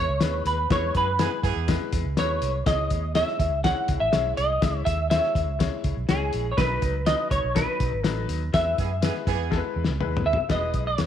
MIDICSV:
0, 0, Header, 1, 6, 480
1, 0, Start_track
1, 0, Key_signature, 4, "major"
1, 0, Tempo, 489796
1, 687, Time_signature, 4, 2, 24, 8
1, 10843, End_track
2, 0, Start_track
2, 0, Title_t, "Clean electric guitar"
2, 0, Program_c, 0, 27
2, 0, Note_on_c, 0, 73, 99
2, 454, Note_off_c, 0, 73, 0
2, 458, Note_on_c, 0, 71, 74
2, 700, Note_off_c, 0, 71, 0
2, 705, Note_on_c, 0, 73, 94
2, 920, Note_off_c, 0, 73, 0
2, 950, Note_on_c, 0, 71, 83
2, 1386, Note_off_c, 0, 71, 0
2, 2144, Note_on_c, 0, 73, 84
2, 2610, Note_off_c, 0, 73, 0
2, 2614, Note_on_c, 0, 75, 103
2, 3088, Note_off_c, 0, 75, 0
2, 3092, Note_on_c, 0, 76, 106
2, 3564, Note_off_c, 0, 76, 0
2, 3567, Note_on_c, 0, 78, 99
2, 3919, Note_off_c, 0, 78, 0
2, 3923, Note_on_c, 0, 76, 101
2, 4282, Note_off_c, 0, 76, 0
2, 4286, Note_on_c, 0, 75, 101
2, 4752, Note_off_c, 0, 75, 0
2, 4756, Note_on_c, 0, 76, 101
2, 4985, Note_off_c, 0, 76, 0
2, 5001, Note_on_c, 0, 76, 101
2, 5966, Note_on_c, 0, 68, 83
2, 5994, Note_off_c, 0, 76, 0
2, 6385, Note_on_c, 0, 73, 61
2, 6392, Note_off_c, 0, 68, 0
2, 6442, Note_on_c, 0, 71, 92
2, 6451, Note_off_c, 0, 73, 0
2, 6923, Note_on_c, 0, 75, 98
2, 6940, Note_off_c, 0, 71, 0
2, 7161, Note_off_c, 0, 75, 0
2, 7165, Note_on_c, 0, 73, 93
2, 7406, Note_on_c, 0, 71, 73
2, 7414, Note_off_c, 0, 73, 0
2, 7906, Note_off_c, 0, 71, 0
2, 7906, Note_on_c, 0, 69, 73
2, 8088, Note_off_c, 0, 69, 0
2, 8369, Note_on_c, 0, 76, 110
2, 9768, Note_off_c, 0, 76, 0
2, 10054, Note_on_c, 0, 76, 95
2, 10274, Note_off_c, 0, 76, 0
2, 10301, Note_on_c, 0, 75, 107
2, 10649, Note_off_c, 0, 75, 0
2, 10653, Note_on_c, 0, 73, 86
2, 10843, Note_off_c, 0, 73, 0
2, 10843, End_track
3, 0, Start_track
3, 0, Title_t, "Upright piano"
3, 0, Program_c, 1, 0
3, 201, Note_on_c, 1, 56, 75
3, 205, Note_on_c, 1, 64, 65
3, 208, Note_on_c, 1, 71, 79
3, 541, Note_off_c, 1, 56, 0
3, 543, Note_off_c, 1, 64, 0
3, 544, Note_off_c, 1, 71, 0
3, 687, Note_on_c, 1, 56, 83
3, 688, Note_on_c, 1, 64, 73
3, 691, Note_on_c, 1, 71, 87
3, 1024, Note_off_c, 1, 56, 0
3, 1025, Note_off_c, 1, 64, 0
3, 1026, Note_off_c, 1, 71, 0
3, 1173, Note_on_c, 1, 56, 69
3, 1175, Note_on_c, 1, 64, 59
3, 1179, Note_on_c, 1, 71, 76
3, 1507, Note_off_c, 1, 56, 0
3, 1508, Note_off_c, 1, 64, 0
3, 1510, Note_off_c, 1, 71, 0
3, 1643, Note_on_c, 1, 56, 84
3, 1647, Note_on_c, 1, 64, 79
3, 1654, Note_on_c, 1, 71, 88
3, 1982, Note_off_c, 1, 56, 0
3, 1984, Note_off_c, 1, 64, 0
3, 1988, Note_off_c, 1, 71, 0
3, 2124, Note_on_c, 1, 64, 66
3, 2125, Note_on_c, 1, 54, 57
3, 2135, Note_on_c, 1, 71, 78
3, 2183, Note_on_c, 1, 56, 67
3, 2184, Note_off_c, 1, 54, 0
3, 2463, Note_off_c, 1, 64, 0
3, 2468, Note_off_c, 1, 71, 0
3, 2493, Note_off_c, 1, 56, 0
3, 2605, Note_on_c, 1, 56, 74
3, 2609, Note_on_c, 1, 64, 67
3, 2616, Note_on_c, 1, 73, 80
3, 2944, Note_off_c, 1, 56, 0
3, 2945, Note_off_c, 1, 64, 0
3, 2949, Note_off_c, 1, 73, 0
3, 3081, Note_on_c, 1, 56, 64
3, 3085, Note_on_c, 1, 63, 49
3, 3092, Note_on_c, 1, 73, 84
3, 3144, Note_off_c, 1, 63, 0
3, 3145, Note_on_c, 1, 64, 63
3, 3422, Note_off_c, 1, 56, 0
3, 3427, Note_off_c, 1, 73, 0
3, 3454, Note_off_c, 1, 64, 0
3, 3563, Note_on_c, 1, 56, 69
3, 3566, Note_on_c, 1, 63, 56
3, 3574, Note_on_c, 1, 73, 78
3, 3625, Note_off_c, 1, 63, 0
3, 3625, Note_on_c, 1, 64, 68
3, 3903, Note_off_c, 1, 56, 0
3, 3909, Note_off_c, 1, 73, 0
3, 3934, Note_off_c, 1, 64, 0
3, 4038, Note_on_c, 1, 56, 78
3, 4043, Note_on_c, 1, 64, 75
3, 4045, Note_on_c, 1, 73, 79
3, 4381, Note_off_c, 1, 56, 0
3, 4383, Note_off_c, 1, 64, 0
3, 4384, Note_off_c, 1, 73, 0
3, 4523, Note_on_c, 1, 56, 70
3, 4526, Note_on_c, 1, 64, 69
3, 4533, Note_on_c, 1, 76, 80
3, 4863, Note_off_c, 1, 56, 0
3, 4865, Note_off_c, 1, 64, 0
3, 4868, Note_off_c, 1, 76, 0
3, 5002, Note_on_c, 1, 56, 68
3, 5009, Note_on_c, 1, 64, 61
3, 5015, Note_on_c, 1, 72, 64
3, 5068, Note_on_c, 1, 73, 80
3, 5070, Note_off_c, 1, 72, 0
3, 5343, Note_off_c, 1, 56, 0
3, 5346, Note_off_c, 1, 64, 0
3, 5375, Note_off_c, 1, 73, 0
3, 5476, Note_on_c, 1, 56, 71
3, 5480, Note_on_c, 1, 64, 68
3, 5487, Note_on_c, 1, 73, 87
3, 5820, Note_off_c, 1, 56, 0
3, 5821, Note_off_c, 1, 64, 0
3, 5825, Note_off_c, 1, 73, 0
3, 5968, Note_on_c, 1, 56, 82
3, 5970, Note_on_c, 1, 64, 74
3, 5976, Note_on_c, 1, 73, 86
3, 6305, Note_off_c, 1, 56, 0
3, 6306, Note_off_c, 1, 64, 0
3, 6309, Note_off_c, 1, 73, 0
3, 6440, Note_on_c, 1, 54, 83
3, 6446, Note_on_c, 1, 63, 78
3, 6449, Note_on_c, 1, 70, 67
3, 6507, Note_off_c, 1, 70, 0
3, 6507, Note_on_c, 1, 71, 92
3, 6781, Note_off_c, 1, 54, 0
3, 6784, Note_off_c, 1, 63, 0
3, 6815, Note_off_c, 1, 71, 0
3, 6920, Note_on_c, 1, 54, 65
3, 6929, Note_on_c, 1, 61, 52
3, 6930, Note_on_c, 1, 71, 75
3, 6986, Note_off_c, 1, 61, 0
3, 6986, Note_on_c, 1, 63, 57
3, 7261, Note_off_c, 1, 54, 0
3, 7266, Note_off_c, 1, 71, 0
3, 7294, Note_off_c, 1, 63, 0
3, 7397, Note_on_c, 1, 54, 75
3, 7400, Note_on_c, 1, 63, 70
3, 7407, Note_on_c, 1, 71, 83
3, 7739, Note_off_c, 1, 54, 0
3, 7741, Note_off_c, 1, 63, 0
3, 7744, Note_off_c, 1, 71, 0
3, 7874, Note_on_c, 1, 54, 79
3, 7883, Note_on_c, 1, 63, 73
3, 7884, Note_on_c, 1, 71, 88
3, 8217, Note_off_c, 1, 54, 0
3, 8222, Note_off_c, 1, 63, 0
3, 8222, Note_off_c, 1, 71, 0
3, 8358, Note_on_c, 1, 56, 73
3, 8360, Note_on_c, 1, 64, 68
3, 8366, Note_on_c, 1, 71, 84
3, 8699, Note_off_c, 1, 56, 0
3, 8700, Note_off_c, 1, 64, 0
3, 8703, Note_off_c, 1, 71, 0
3, 8836, Note_on_c, 1, 56, 74
3, 8840, Note_on_c, 1, 64, 61
3, 8845, Note_on_c, 1, 71, 84
3, 9178, Note_off_c, 1, 56, 0
3, 9180, Note_off_c, 1, 64, 0
3, 9182, Note_off_c, 1, 71, 0
3, 9312, Note_on_c, 1, 56, 82
3, 9317, Note_on_c, 1, 64, 77
3, 9321, Note_on_c, 1, 69, 75
3, 9379, Note_on_c, 1, 71, 89
3, 9381, Note_off_c, 1, 69, 0
3, 9656, Note_off_c, 1, 56, 0
3, 9658, Note_off_c, 1, 64, 0
3, 9689, Note_off_c, 1, 71, 0
3, 9802, Note_on_c, 1, 56, 83
3, 9803, Note_on_c, 1, 64, 83
3, 9805, Note_on_c, 1, 71, 90
3, 10140, Note_off_c, 1, 56, 0
3, 10141, Note_off_c, 1, 64, 0
3, 10142, Note_off_c, 1, 71, 0
3, 10278, Note_on_c, 1, 55, 73
3, 10283, Note_on_c, 1, 64, 84
3, 10286, Note_on_c, 1, 71, 100
3, 10334, Note_on_c, 1, 56, 92
3, 10340, Note_off_c, 1, 55, 0
3, 10621, Note_off_c, 1, 64, 0
3, 10623, Note_off_c, 1, 71, 0
3, 10647, Note_off_c, 1, 56, 0
3, 10760, Note_on_c, 1, 56, 62
3, 10766, Note_on_c, 1, 64, 58
3, 10767, Note_on_c, 1, 71, 66
3, 10843, Note_off_c, 1, 56, 0
3, 10843, Note_off_c, 1, 64, 0
3, 10843, Note_off_c, 1, 71, 0
3, 10843, End_track
4, 0, Start_track
4, 0, Title_t, "Horn section"
4, 0, Program_c, 2, 61
4, 926, Note_on_c, 2, 59, 75
4, 926, Note_on_c, 2, 68, 89
4, 928, Note_on_c, 2, 52, 68
4, 1028, Note_off_c, 2, 59, 0
4, 1029, Note_off_c, 2, 68, 0
4, 1030, Note_off_c, 2, 52, 0
4, 1159, Note_on_c, 2, 52, 88
4, 1159, Note_on_c, 2, 59, 82
4, 1164, Note_on_c, 2, 68, 94
4, 1264, Note_off_c, 2, 52, 0
4, 1265, Note_off_c, 2, 59, 0
4, 1267, Note_off_c, 2, 68, 0
4, 1405, Note_on_c, 2, 59, 88
4, 1405, Note_on_c, 2, 68, 94
4, 1407, Note_on_c, 2, 52, 95
4, 1748, Note_off_c, 2, 59, 0
4, 1749, Note_off_c, 2, 52, 0
4, 1749, Note_off_c, 2, 68, 0
4, 8607, Note_on_c, 2, 52, 80
4, 8608, Note_on_c, 2, 68, 88
4, 8609, Note_on_c, 2, 59, 75
4, 8709, Note_off_c, 2, 52, 0
4, 8710, Note_off_c, 2, 59, 0
4, 8710, Note_off_c, 2, 68, 0
4, 8848, Note_on_c, 2, 68, 91
4, 8853, Note_on_c, 2, 52, 90
4, 8854, Note_on_c, 2, 59, 86
4, 8950, Note_off_c, 2, 68, 0
4, 8953, Note_off_c, 2, 52, 0
4, 8953, Note_off_c, 2, 59, 0
4, 9085, Note_on_c, 2, 68, 104
4, 9086, Note_on_c, 2, 52, 96
4, 9088, Note_on_c, 2, 59, 94
4, 9428, Note_off_c, 2, 52, 0
4, 9428, Note_off_c, 2, 68, 0
4, 9429, Note_off_c, 2, 59, 0
4, 10843, End_track
5, 0, Start_track
5, 0, Title_t, "Fingered electric bass"
5, 0, Program_c, 3, 33
5, 88, Note_on_c, 3, 37, 93
5, 189, Note_off_c, 3, 37, 0
5, 206, Note_on_c, 3, 39, 83
5, 409, Note_off_c, 3, 39, 0
5, 444, Note_on_c, 3, 39, 87
5, 648, Note_off_c, 3, 39, 0
5, 690, Note_on_c, 3, 40, 117
5, 891, Note_off_c, 3, 40, 0
5, 929, Note_on_c, 3, 42, 88
5, 1233, Note_off_c, 3, 42, 0
5, 1406, Note_on_c, 3, 42, 90
5, 1508, Note_off_c, 3, 42, 0
5, 1528, Note_on_c, 3, 40, 82
5, 1731, Note_off_c, 3, 40, 0
5, 1891, Note_on_c, 3, 40, 94
5, 1991, Note_off_c, 3, 40, 0
5, 2006, Note_on_c, 3, 37, 97
5, 2108, Note_off_c, 3, 37, 0
5, 2128, Note_on_c, 3, 39, 79
5, 2331, Note_off_c, 3, 39, 0
5, 2370, Note_on_c, 3, 36, 85
5, 2572, Note_off_c, 3, 36, 0
5, 2610, Note_on_c, 3, 37, 101
5, 2812, Note_off_c, 3, 37, 0
5, 2851, Note_on_c, 3, 39, 83
5, 3155, Note_off_c, 3, 39, 0
5, 3327, Note_on_c, 3, 39, 87
5, 3448, Note_off_c, 3, 39, 0
5, 3448, Note_on_c, 3, 37, 87
5, 3651, Note_off_c, 3, 37, 0
5, 3807, Note_on_c, 3, 37, 87
5, 3910, Note_off_c, 3, 37, 0
5, 3933, Note_on_c, 3, 33, 96
5, 4033, Note_off_c, 3, 33, 0
5, 4055, Note_on_c, 3, 35, 86
5, 4255, Note_off_c, 3, 35, 0
5, 4292, Note_on_c, 3, 36, 79
5, 4494, Note_off_c, 3, 36, 0
5, 4530, Note_on_c, 3, 37, 112
5, 4733, Note_off_c, 3, 37, 0
5, 4769, Note_on_c, 3, 39, 93
5, 5073, Note_off_c, 3, 39, 0
5, 5245, Note_on_c, 3, 39, 87
5, 5371, Note_off_c, 3, 39, 0
5, 5371, Note_on_c, 3, 37, 73
5, 5573, Note_off_c, 3, 37, 0
5, 5726, Note_on_c, 3, 37, 92
5, 5829, Note_off_c, 3, 37, 0
5, 5851, Note_on_c, 3, 35, 93
5, 5952, Note_off_c, 3, 35, 0
5, 5970, Note_on_c, 3, 37, 84
5, 6173, Note_off_c, 3, 37, 0
5, 6213, Note_on_c, 3, 34, 79
5, 6414, Note_off_c, 3, 34, 0
5, 6445, Note_on_c, 3, 35, 117
5, 6649, Note_off_c, 3, 35, 0
5, 6687, Note_on_c, 3, 37, 71
5, 6992, Note_off_c, 3, 37, 0
5, 7164, Note_on_c, 3, 37, 83
5, 7267, Note_off_c, 3, 37, 0
5, 7290, Note_on_c, 3, 35, 84
5, 7492, Note_off_c, 3, 35, 0
5, 7645, Note_on_c, 3, 35, 100
5, 7748, Note_off_c, 3, 35, 0
5, 7767, Note_on_c, 3, 32, 102
5, 7869, Note_off_c, 3, 32, 0
5, 7879, Note_on_c, 3, 33, 91
5, 8085, Note_off_c, 3, 33, 0
5, 8119, Note_on_c, 3, 39, 81
5, 8325, Note_off_c, 3, 39, 0
5, 8367, Note_on_c, 3, 40, 121
5, 8570, Note_off_c, 3, 40, 0
5, 8608, Note_on_c, 3, 42, 84
5, 8911, Note_off_c, 3, 42, 0
5, 9084, Note_on_c, 3, 42, 88
5, 9206, Note_off_c, 3, 42, 0
5, 9206, Note_on_c, 3, 40, 93
5, 9409, Note_off_c, 3, 40, 0
5, 9566, Note_on_c, 3, 40, 85
5, 9667, Note_off_c, 3, 40, 0
5, 9686, Note_on_c, 3, 37, 88
5, 9788, Note_off_c, 3, 37, 0
5, 9807, Note_on_c, 3, 39, 90
5, 10010, Note_off_c, 3, 39, 0
5, 10048, Note_on_c, 3, 39, 80
5, 10148, Note_off_c, 3, 39, 0
5, 10287, Note_on_c, 3, 28, 97
5, 10490, Note_off_c, 3, 28, 0
5, 10526, Note_on_c, 3, 35, 90
5, 10728, Note_off_c, 3, 35, 0
5, 10772, Note_on_c, 3, 40, 97
5, 10843, Note_off_c, 3, 40, 0
5, 10843, End_track
6, 0, Start_track
6, 0, Title_t, "Drums"
6, 201, Note_on_c, 9, 38, 112
6, 205, Note_on_c, 9, 42, 92
6, 299, Note_off_c, 9, 38, 0
6, 303, Note_off_c, 9, 42, 0
6, 447, Note_on_c, 9, 42, 69
6, 545, Note_off_c, 9, 42, 0
6, 690, Note_on_c, 9, 36, 117
6, 690, Note_on_c, 9, 42, 87
6, 692, Note_on_c, 9, 38, 111
6, 788, Note_off_c, 9, 36, 0
6, 788, Note_off_c, 9, 42, 0
6, 790, Note_off_c, 9, 38, 0
6, 927, Note_on_c, 9, 42, 66
6, 929, Note_on_c, 9, 36, 84
6, 1025, Note_off_c, 9, 42, 0
6, 1027, Note_off_c, 9, 36, 0
6, 1167, Note_on_c, 9, 42, 106
6, 1169, Note_on_c, 9, 38, 115
6, 1265, Note_off_c, 9, 42, 0
6, 1267, Note_off_c, 9, 38, 0
6, 1406, Note_on_c, 9, 36, 85
6, 1410, Note_on_c, 9, 42, 70
6, 1504, Note_off_c, 9, 36, 0
6, 1508, Note_off_c, 9, 42, 0
6, 1647, Note_on_c, 9, 42, 104
6, 1650, Note_on_c, 9, 36, 112
6, 1653, Note_on_c, 9, 38, 127
6, 1745, Note_off_c, 9, 42, 0
6, 1748, Note_off_c, 9, 36, 0
6, 1751, Note_off_c, 9, 38, 0
6, 1886, Note_on_c, 9, 42, 84
6, 1889, Note_on_c, 9, 36, 108
6, 1984, Note_off_c, 9, 42, 0
6, 1987, Note_off_c, 9, 36, 0
6, 2126, Note_on_c, 9, 38, 101
6, 2130, Note_on_c, 9, 42, 91
6, 2224, Note_off_c, 9, 38, 0
6, 2228, Note_off_c, 9, 42, 0
6, 2369, Note_on_c, 9, 42, 76
6, 2467, Note_off_c, 9, 42, 0
6, 2610, Note_on_c, 9, 36, 120
6, 2610, Note_on_c, 9, 42, 90
6, 2612, Note_on_c, 9, 38, 107
6, 2708, Note_off_c, 9, 36, 0
6, 2708, Note_off_c, 9, 42, 0
6, 2710, Note_off_c, 9, 38, 0
6, 2846, Note_on_c, 9, 42, 69
6, 2850, Note_on_c, 9, 36, 84
6, 2944, Note_off_c, 9, 42, 0
6, 2948, Note_off_c, 9, 36, 0
6, 3087, Note_on_c, 9, 42, 102
6, 3090, Note_on_c, 9, 38, 127
6, 3185, Note_off_c, 9, 42, 0
6, 3188, Note_off_c, 9, 38, 0
6, 3210, Note_on_c, 9, 38, 40
6, 3308, Note_off_c, 9, 38, 0
6, 3327, Note_on_c, 9, 36, 89
6, 3330, Note_on_c, 9, 42, 76
6, 3425, Note_off_c, 9, 36, 0
6, 3428, Note_off_c, 9, 42, 0
6, 3570, Note_on_c, 9, 42, 92
6, 3572, Note_on_c, 9, 36, 117
6, 3576, Note_on_c, 9, 38, 125
6, 3668, Note_off_c, 9, 42, 0
6, 3670, Note_off_c, 9, 36, 0
6, 3674, Note_off_c, 9, 38, 0
6, 3804, Note_on_c, 9, 42, 80
6, 3810, Note_on_c, 9, 36, 103
6, 3902, Note_off_c, 9, 42, 0
6, 3908, Note_off_c, 9, 36, 0
6, 4045, Note_on_c, 9, 38, 110
6, 4048, Note_on_c, 9, 42, 87
6, 4143, Note_off_c, 9, 38, 0
6, 4146, Note_off_c, 9, 42, 0
6, 4287, Note_on_c, 9, 42, 74
6, 4385, Note_off_c, 9, 42, 0
6, 4529, Note_on_c, 9, 42, 95
6, 4530, Note_on_c, 9, 36, 111
6, 4530, Note_on_c, 9, 38, 115
6, 4627, Note_off_c, 9, 42, 0
6, 4628, Note_off_c, 9, 36, 0
6, 4628, Note_off_c, 9, 38, 0
6, 4767, Note_on_c, 9, 42, 79
6, 4769, Note_on_c, 9, 36, 87
6, 4865, Note_off_c, 9, 42, 0
6, 4867, Note_off_c, 9, 36, 0
6, 5008, Note_on_c, 9, 42, 99
6, 5010, Note_on_c, 9, 38, 117
6, 5106, Note_off_c, 9, 42, 0
6, 5108, Note_off_c, 9, 38, 0
6, 5129, Note_on_c, 9, 38, 41
6, 5227, Note_off_c, 9, 38, 0
6, 5246, Note_on_c, 9, 36, 88
6, 5252, Note_on_c, 9, 42, 73
6, 5344, Note_off_c, 9, 36, 0
6, 5350, Note_off_c, 9, 42, 0
6, 5490, Note_on_c, 9, 42, 97
6, 5491, Note_on_c, 9, 36, 111
6, 5497, Note_on_c, 9, 38, 127
6, 5588, Note_off_c, 9, 42, 0
6, 5589, Note_off_c, 9, 36, 0
6, 5595, Note_off_c, 9, 38, 0
6, 5724, Note_on_c, 9, 42, 75
6, 5728, Note_on_c, 9, 36, 98
6, 5822, Note_off_c, 9, 42, 0
6, 5826, Note_off_c, 9, 36, 0
6, 5964, Note_on_c, 9, 38, 113
6, 5968, Note_on_c, 9, 42, 102
6, 6062, Note_off_c, 9, 38, 0
6, 6066, Note_off_c, 9, 42, 0
6, 6200, Note_on_c, 9, 42, 75
6, 6298, Note_off_c, 9, 42, 0
6, 6446, Note_on_c, 9, 36, 122
6, 6448, Note_on_c, 9, 42, 91
6, 6449, Note_on_c, 9, 38, 127
6, 6544, Note_off_c, 9, 36, 0
6, 6546, Note_off_c, 9, 42, 0
6, 6547, Note_off_c, 9, 38, 0
6, 6684, Note_on_c, 9, 42, 68
6, 6687, Note_on_c, 9, 36, 91
6, 6782, Note_off_c, 9, 42, 0
6, 6785, Note_off_c, 9, 36, 0
6, 6923, Note_on_c, 9, 42, 102
6, 6926, Note_on_c, 9, 38, 105
6, 7021, Note_off_c, 9, 42, 0
6, 7024, Note_off_c, 9, 38, 0
6, 7163, Note_on_c, 9, 36, 89
6, 7165, Note_on_c, 9, 42, 70
6, 7261, Note_off_c, 9, 36, 0
6, 7263, Note_off_c, 9, 42, 0
6, 7406, Note_on_c, 9, 42, 95
6, 7408, Note_on_c, 9, 36, 117
6, 7413, Note_on_c, 9, 38, 121
6, 7504, Note_off_c, 9, 42, 0
6, 7506, Note_off_c, 9, 36, 0
6, 7511, Note_off_c, 9, 38, 0
6, 7645, Note_on_c, 9, 42, 74
6, 7647, Note_on_c, 9, 36, 97
6, 7743, Note_off_c, 9, 42, 0
6, 7745, Note_off_c, 9, 36, 0
6, 7882, Note_on_c, 9, 38, 109
6, 7885, Note_on_c, 9, 42, 92
6, 7980, Note_off_c, 9, 38, 0
6, 7983, Note_off_c, 9, 42, 0
6, 8124, Note_on_c, 9, 42, 84
6, 8222, Note_off_c, 9, 42, 0
6, 8366, Note_on_c, 9, 42, 92
6, 8368, Note_on_c, 9, 36, 122
6, 8368, Note_on_c, 9, 38, 113
6, 8464, Note_off_c, 9, 42, 0
6, 8466, Note_off_c, 9, 36, 0
6, 8466, Note_off_c, 9, 38, 0
6, 8608, Note_on_c, 9, 42, 71
6, 8609, Note_on_c, 9, 36, 90
6, 8706, Note_off_c, 9, 42, 0
6, 8707, Note_off_c, 9, 36, 0
6, 8844, Note_on_c, 9, 42, 115
6, 8847, Note_on_c, 9, 38, 116
6, 8942, Note_off_c, 9, 42, 0
6, 8945, Note_off_c, 9, 38, 0
6, 8965, Note_on_c, 9, 38, 40
6, 9063, Note_off_c, 9, 38, 0
6, 9084, Note_on_c, 9, 36, 94
6, 9088, Note_on_c, 9, 42, 74
6, 9182, Note_off_c, 9, 36, 0
6, 9186, Note_off_c, 9, 42, 0
6, 9326, Note_on_c, 9, 38, 68
6, 9327, Note_on_c, 9, 36, 114
6, 9424, Note_off_c, 9, 38, 0
6, 9425, Note_off_c, 9, 36, 0
6, 9648, Note_on_c, 9, 38, 80
6, 9746, Note_off_c, 9, 38, 0
6, 9805, Note_on_c, 9, 45, 78
6, 9903, Note_off_c, 9, 45, 0
6, 9963, Note_on_c, 9, 43, 101
6, 10061, Note_off_c, 9, 43, 0
6, 10125, Note_on_c, 9, 43, 99
6, 10223, Note_off_c, 9, 43, 0
6, 10286, Note_on_c, 9, 36, 104
6, 10286, Note_on_c, 9, 42, 78
6, 10287, Note_on_c, 9, 38, 108
6, 10384, Note_off_c, 9, 36, 0
6, 10384, Note_off_c, 9, 42, 0
6, 10385, Note_off_c, 9, 38, 0
6, 10522, Note_on_c, 9, 42, 66
6, 10526, Note_on_c, 9, 36, 88
6, 10620, Note_off_c, 9, 42, 0
6, 10624, Note_off_c, 9, 36, 0
6, 10762, Note_on_c, 9, 42, 94
6, 10764, Note_on_c, 9, 38, 108
6, 10843, Note_off_c, 9, 38, 0
6, 10843, Note_off_c, 9, 42, 0
6, 10843, End_track
0, 0, End_of_file